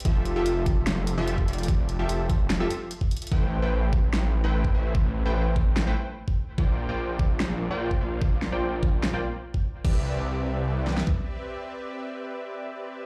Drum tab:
CC |--------------------------------|--------------------------------|--------------------------------|--------------------------------|
HH |x---x---x---x---x---x---x---xxxx|x---x---x---x---x---x---x---xxxx|--------------------------------|--------------------------------|
SD |----------------o---------------|----------------o---------------|----------------o---------------|----------------o---------------|
BD |o-----------o-------------o-----|o-----------o-------------o-----|o-----------o-------------o-----|o-----------o-------------o-----|

CC |--------------------------------|--------------------------------|x-------------------------------|--------------------------------|
HH |--------------------------------|--------------------------------|--------------------------------|--------------------------------|
SD |----------------o---------------|----o-----------o---------------|--------------------o-o---------|--------------------------------|
BD |o-----------o-------------o-----|o-----------o-------------o-----|o-----------------------o-------|--------------------------------|